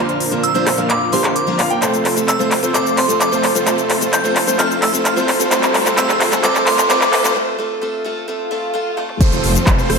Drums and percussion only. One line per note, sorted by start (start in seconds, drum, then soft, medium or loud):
0.09 closed hi-hat soft
0.20 open hi-hat loud
0.32 closed hi-hat soft
0.43 closed hi-hat medium
0.55 closed hi-hat soft
0.67 cross-stick medium
0.67 clap medium
0.67 open hi-hat loud
0.78 closed hi-hat soft
0.90 clap medium
0.90 closed hi-hat medium
1.13 open hi-hat loud
1.24 cross-stick medium
1.24 clap medium
1.24 closed hi-hat medium
1.36 closed hi-hat medium
1.59 clap medium
1.59 open hi-hat loud
1.70 closed hi-hat medium
1.82 clap medium
1.82 closed hi-hat medium
1.82 shaker medium
1.94 closed hi-hat soft
1.94 shaker soft
2.05 clap medium
2.05 open hi-hat loud
2.17 closed hi-hat medium
2.17 shaker medium
2.28 clap medium
2.28 closed hi-hat medium
2.28 shaker medium
2.40 shaker soft
2.51 clap medium
2.51 open hi-hat loud
2.63 closed hi-hat soft
2.63 shaker medium
2.74 clap medium
2.74 closed hi-hat medium
2.74 shaker medium
2.87 shaker soft
2.97 clap medium
2.97 open hi-hat loud
3.09 closed hi-hat medium
3.09 shaker medium
3.20 clap medium
3.20 closed hi-hat medium
3.20 shaker medium
3.33 shaker soft
3.43 clap medium
3.43 open hi-hat loud
3.55 closed hi-hat medium
3.55 shaker medium
3.67 clap medium
3.67 closed hi-hat medium
3.67 shaker medium
3.78 closed hi-hat soft
3.78 shaker soft
3.90 clap medium
3.90 open hi-hat loud
4.01 closed hi-hat medium
4.01 shaker medium
4.13 clap medium
4.13 closed hi-hat medium
4.13 shaker medium
4.25 shaker soft
4.36 clap medium
4.36 open hi-hat loud
4.47 closed hi-hat medium
4.47 shaker medium
4.59 clap medium
4.59 closed hi-hat medium
4.59 shaker medium
4.71 shaker soft
4.82 clap medium
4.82 open hi-hat loud
4.94 closed hi-hat medium
4.94 shaker medium
5.05 clap medium
5.05 closed hi-hat medium
5.05 shaker medium
5.17 shaker soft
5.28 clap medium
5.28 open hi-hat loud
5.40 closed hi-hat medium
5.40 shaker medium
5.51 clap loud
5.51 closed hi-hat medium
5.51 shaker medium
5.63 clap medium
5.63 closed hi-hat soft
5.63 shaker soft
5.74 clap medium
5.74 open hi-hat loud
5.86 clap medium
5.86 closed hi-hat medium
5.86 shaker medium
5.97 clap loud
5.97 closed hi-hat medium
5.97 shaker medium
6.09 clap medium
6.09 shaker soft
6.20 clap loud
6.20 open hi-hat loud
6.32 clap medium
6.32 closed hi-hat medium
6.32 shaker medium
6.44 clap loud
6.44 closed hi-hat medium
6.44 shaker medium
6.55 clap medium
6.55 shaker soft
6.67 clap loud
6.67 open hi-hat loud
6.78 clap medium
6.78 closed hi-hat medium
6.78 shaker medium
6.90 clap loud
6.90 closed hi-hat medium
6.90 shaker medium
7.01 clap medium
7.01 shaker soft
7.13 clap loud
7.13 open hi-hat loud
7.24 clap medium
7.24 closed hi-hat medium
7.24 shaker medium
8.97 high tom medium
9.09 mid tom medium
9.21 kick loud
9.21 closed hi-hat medium
9.21 crash loud
9.21 shaker medium
9.32 closed hi-hat soft
9.32 shaker soft
9.44 open hi-hat loud
9.55 closed hi-hat medium
9.55 shaker medium
9.67 kick loud
9.67 clap loud
9.67 closed hi-hat medium
9.67 shaker medium
9.79 shaker soft
9.90 cross-stick medium
9.90 open hi-hat loud